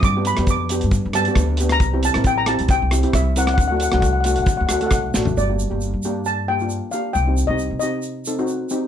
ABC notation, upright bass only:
X:1
M:4/4
L:1/16
Q:"Swing 16ths" 1/4=135
K:Dphr
V:1 name="Upright bass" clef=bass
G,,3 F,,4 G,,2 G,,2 z D,,4 | C,,3 A,,,4 C,,2 C,,2 z C,,4 | D,,3 C,,4 D,,2 D,, D,,2 C,,2 A,,,2 | [K:Gm] G,,,3 G,,,2 G,,8 z3 |
C,,3 C,,2 C,8 z3 |]